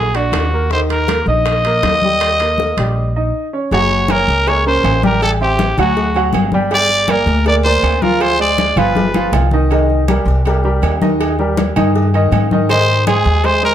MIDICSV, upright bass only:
0, 0, Header, 1, 2, 480
1, 0, Start_track
1, 0, Key_signature, -3, "major"
1, 0, Tempo, 374766
1, 900, Time_signature, 4, 2, 24, 8
1, 17608, End_track
2, 0, Start_track
2, 0, Title_t, "Upright bass"
2, 0, Program_c, 0, 32
2, 0, Note_on_c, 0, 34, 86
2, 362, Note_off_c, 0, 34, 0
2, 408, Note_on_c, 0, 39, 83
2, 1543, Note_off_c, 0, 39, 0
2, 1611, Note_on_c, 0, 34, 90
2, 2290, Note_off_c, 0, 34, 0
2, 2342, Note_on_c, 0, 39, 81
2, 3473, Note_off_c, 0, 39, 0
2, 3549, Note_on_c, 0, 34, 90
2, 4222, Note_off_c, 0, 34, 0
2, 4755, Note_on_c, 0, 30, 91
2, 5426, Note_off_c, 0, 30, 0
2, 5478, Note_on_c, 0, 37, 91
2, 6147, Note_off_c, 0, 37, 0
2, 6194, Note_on_c, 0, 33, 92
2, 7321, Note_off_c, 0, 33, 0
2, 7395, Note_on_c, 0, 38, 91
2, 8065, Note_off_c, 0, 38, 0
2, 8114, Note_on_c, 0, 31, 90
2, 9239, Note_off_c, 0, 31, 0
2, 9299, Note_on_c, 0, 38, 100
2, 9975, Note_off_c, 0, 38, 0
2, 10023, Note_on_c, 0, 38, 90
2, 11152, Note_off_c, 0, 38, 0
2, 11222, Note_on_c, 0, 31, 94
2, 11895, Note_off_c, 0, 31, 0
2, 11934, Note_on_c, 0, 36, 86
2, 13065, Note_off_c, 0, 36, 0
2, 13134, Note_on_c, 0, 36, 100
2, 13809, Note_off_c, 0, 36, 0
2, 13858, Note_on_c, 0, 39, 97
2, 14984, Note_off_c, 0, 39, 0
2, 15063, Note_on_c, 0, 43, 96
2, 15731, Note_off_c, 0, 43, 0
2, 15773, Note_on_c, 0, 44, 91
2, 16899, Note_off_c, 0, 44, 0
2, 16975, Note_on_c, 0, 39, 98
2, 17608, Note_off_c, 0, 39, 0
2, 17608, End_track
0, 0, End_of_file